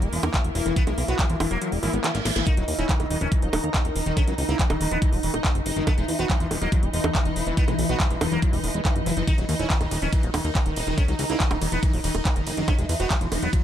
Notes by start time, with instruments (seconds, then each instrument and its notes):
Already playing: synth texture A#3 A#4, ambient pad E4
0.02 analog synth bass E1, acid bass G#3, closed hi-hat
0.13 analog synth bass E1, sitar E3, open hi-hat
0.23 analog synth bass E2, closed hi-hat, high bongo
0.34 acid bass D#3, sitar E3, kick, clap, closed hi-hat
0.44 analog synth bass E1, closed hi-hat
0.55 analog synth bass E1, sitar E3, open hi-hat
0.66 analog synth bass E1, acid bass E3, sitar E3, closed hi-hat
0.76 acid bass E3, sitar B3, kick, closed hi-hat
0.87 analog synth bass B1, sitar E3, acid bass G#3, closed hi-hat, high bongo
0.98 analog synth bass B1, sitar E3, open hi-hat
1.08 analog synth bass B1, sitar B3, acid bass F#4, closed hi-hat
1.19 sitar E3, acid bass F#3, kick, clap, closed hi-hat
1.30 analog synth bass E1, sitar E3, acid bass E3, closed hi-hat
1.40 analog synth bass E1, sitar E3, acid bass E3, open hi-hat, high bongo
1.51 analog synth bass E1, acid bass F#3, sitar A#3, closed hi-hat
1.61 sitar E3, acid bass F#3, closed hi-hat, reverse cymbal
1.72 analog synth bass E1, acid bass G#3, open hi-hat
1.83 analog synth bass G#1, sitar E3, acid bass E4, open hi-hat
1.93 analog synth bass G#1, acid bass B3, closed hi-hat
2.04 sitar E3, acid bass E3, clap, closed hi-hat, high bongo
2.15 analog synth bass G#1, snare, closed hi-hat
2.25 analog synth bass G#1, sitar E3, snare, open hi-hat
2.36 analog synth bass G#1, acid bass E3, sitar E3, snare, closed hi-hat
2.47 acid bass D#3, sitar D#4, ambient pad D#4, synth texture D#4 D#5, kick, closed hi-hat
2.57 analog synth bass D#1, sitar D#3, acid bass F#3, ambient pad A#5, closed hi-hat
2.63 ambient pad A#4
2.68 analog synth bass D#2, sitar D#3, open hi-hat
2.79 analog synth bass D#1, sitar C#4, acid bass E4, closed hi-hat
2.89 sitar D#3, acid bass E3, kick, clap, closed hi-hat
3.00 analog synth bass D#1, acid bass D#3, sitar D#3, closed hi-hat, high bongo
3.10 analog synth bass D#1, acid bass D#3, sitar D#3, open hi-hat
3.21 analog synth bass D#1, acid bass E3, sitar C#4, closed hi-hat
3.32 sitar D#3, acid bass E3, kick, closed hi-hat
3.42 analog synth bass D#1, acid bass F#3, closed hi-hat
3.53 analog synth bass D#1, sitar D#3, open hi-hat, high bongo
3.64 analog synth bass D#2, closed hi-hat
3.74 acid bass C#3, sitar D#3, kick, clap, closed hi-hat
3.85 analog synth bass D#1, closed hi-hat
3.96 analog synth bass D#1, sitar D#3, open hi-hat
4.06 analog synth bass D#1, acid bass D#3, sitar D#3, closed hi-hat
4.17 sitar C#4, kick, closed hi-hat, high bongo
4.27 analog synth bass C#2, sitar D#3, acid bass F#3, closed hi-hat
4.38 analog synth bass C#2, sitar D#3, open hi-hat
4.49 analog synth bass C#2, sitar A#3, acid bass E4, closed hi-hat
4.59 sitar D#3, acid bass E3, kick, clap, closed hi-hat
4.70 analog synth bass D#1, acid bass D#3, sitar D#3, closed hi-hat, high bongo
4.81 analog synth bass D#1, acid bass D#3, sitar D#3, open hi-hat
4.91 analog synth bass D#1, acid bass E3, sitar B3, closed hi-hat
5.02 sitar D#3, acid bass E3, kick, closed hi-hat
5.13 analog synth bass D#1, acid bass F#3, open hi-hat
5.23 analog synth bass D#1, sitar D#3, open hi-hat
5.34 analog synth bass D#1, closed hi-hat, high bongo
5.44 acid bass C#3, sitar D#3, kick, clap, closed hi-hat
5.55 analog synth bass F#1, closed hi-hat
5.66 analog synth bass F#1, sitar D#3, open hi-hat
5.76 analog synth bass F#1, sitar D#3, acid bass D#3, closed hi-hat
5.87 acid bass E3, ambient pad E3, sitar B3, kick, closed hi-hat, high bongo
5.98 analog synth bass E1, sitar E3, acid bass G#3, ambient pad B4, closed hi-hat
6.08 analog synth bass E2, sitar E3, open hi-hat
6.19 analog synth bass E1, sitar B3, acid bass F#4, closed hi-hat
6.30 sitar E3, acid bass F#3, kick, clap, closed hi-hat
6.40 analog synth bass E1, sitar E3, acid bass E3, ambient pad B5, closed hi-hat
6.51 analog synth bass E1, sitar E3, acid bass E3, open hi-hat, high bongo
6.62 analog synth bass E1, acid bass F#3, sitar A#3, closed hi-hat
6.72 sitar E3, acid bass F#3, kick, closed hi-hat
6.83 analog synth bass E1, acid bass G#3, closed hi-hat
6.93 analog synth bass E1, sitar E3, open hi-hat
7.04 analog synth bass E2, closed hi-hat, high bongo
7.15 acid bass D#3, sitar E3, kick, clap, closed hi-hat
7.25 analog synth bass E1, closed hi-hat
7.36 analog synth bass E1, sitar E3, open hi-hat
7.47 analog synth bass E1, acid bass E3, sitar E3, closed hi-hat
7.57 acid bass E3, sitar B3, kick, closed hi-hat
7.68 analog synth bass B1, sitar E3, acid bass G#3, closed hi-hat, high bongo
7.79 analog synth bass B1, sitar E3, open hi-hat
7.89 analog synth bass B1, sitar B3, acid bass F#4, closed hi-hat
8.00 sitar E3, acid bass F#3, kick, clap, closed hi-hat
8.10 analog synth bass E1, acid bass E3, sitar E3, closed hi-hat
8.21 analog synth bass E1, acid bass E3, sitar E3, open hi-hat, high bongo
8.32 analog synth bass E1, acid bass F#3, sitar A#3, closed hi-hat
8.42 sitar E3, acid bass F#3, kick, closed hi-hat
8.53 analog synth bass E1, acid bass G#3, open hi-hat
8.64 analog synth bass E1, sitar E3, open hi-hat
8.74 analog synth bass E1, acid bass G#3, closed hi-hat
8.85 sitar E3, kick, clap, closed hi-hat, high bongo
8.96 analog synth bass F#1, closed hi-hat
9.06 analog synth bass F#1, sitar E3, acid bass E4, open hi-hat
9.17 analog synth bass F#1, acid bass E3, sitar E3, closed hi-hat
9.27 acid bass D#3, ambient pad D#4, sitar D#4, kick, closed hi-hat, ride
9.38 analog synth bass D#1, sitar D#3, acid bass F#3, closed hi-hat
9.49 analog synth bass D#2, sitar D#3, ambient pad A#4, open hi-hat, ride
9.59 analog synth bass D#1, sitar C#4, acid bass E4, closed hi-hat
9.70 sitar D#3, acid bass E3, kick, clap, closed hi-hat, ride
9.81 analog synth bass D#1, acid bass D#3, sitar D#3, ambient pad A#5, closed hi-hat, high bongo
9.91 analog synth bass D#1, sitar D#3, acid bass D#3, open hi-hat, ride
10.02 analog synth bass D#1, acid bass E3, sitar C#4, closed hi-hat
10.13 sitar D#3, acid bass E3, kick, closed hi-hat, ride
10.23 analog synth bass D#1, acid bass F#3, closed hi-hat
10.34 analog synth bass D#1, sitar D#3, open hi-hat, ride, high bongo
10.44 analog synth bass D#2, closed hi-hat
10.55 acid bass C#3, sitar D#3, kick, clap, closed hi-hat, ride
10.66 analog synth bass D#1, acid bass D#3, closed hi-hat
10.76 analog synth bass D#1, sitar D#3, open hi-hat, ride
10.87 analog synth bass D#1, acid bass D#3, sitar D#3, closed hi-hat
10.98 acid bass D#3, sitar C#4, kick, closed hi-hat, ride, high bongo
11.08 analog synth bass C#2, sitar D#3, acid bass F#3, closed hi-hat
11.19 analog synth bass C#2, sitar D#3, open hi-hat, ride
11.30 analog synth bass C#2, sitar A#3, acid bass E4, closed hi-hat
11.40 sitar D#3, acid bass E3, kick, clap, closed hi-hat, ride
11.51 analog synth bass D#1, sitar D#3, acid bass D#3, closed hi-hat, high bongo
11.61 analog synth bass D#1, sitar D#3, acid bass D#3, open hi-hat, ride
11.72 analog synth bass D#1, acid bass E3, sitar B3, closed hi-hat
11.83 sitar D#3, acid bass E3, kick, closed hi-hat, ride
11.93 analog synth bass D#1, acid bass F#3, open hi-hat
12.04 analog synth bass D#1, sitar D#3, open hi-hat, ride
12.15 analog synth bass D#1, closed hi-hat, high bongo
12.25 acid bass C#3, sitar D#3, kick, clap, closed hi-hat, ride
12.36 analog synth bass F#1, acid bass D#3, closed hi-hat
12.47 analog synth bass F#1, sitar D#3, open hi-hat, ride
12.57 analog synth bass F#1, acid bass D#3, sitar D#3, closed hi-hat
12.68 ambient pad E3, acid bass E3, sitar C#4, kick, closed hi-hat, ride, high bongo
12.79 analog synth bass E1, sitar E3, acid bass G#3, closed hi-hat
12.85 ambient pad B4
12.89 analog synth bass E2, sitar E3, open hi-hat, ride
12.99 analog synth bass E1, sitar B3, acid bass F#4, ambient pad B5, closed hi-hat
13.10 sitar E3, acid bass F#3, kick, clap, closed hi-hat, ride
13.21 analog synth bass E1, acid bass E3, sitar E3, closed hi-hat
13.32 analog synth bass E1, acid bass E3, sitar E3, open hi-hat, ride, high bongo
13.42 analog synth bass E1, acid bass F#3, sitar B3, closed hi-hat
13.53 sitar E3, acid bass F#3, kick, closed hi-hat, ride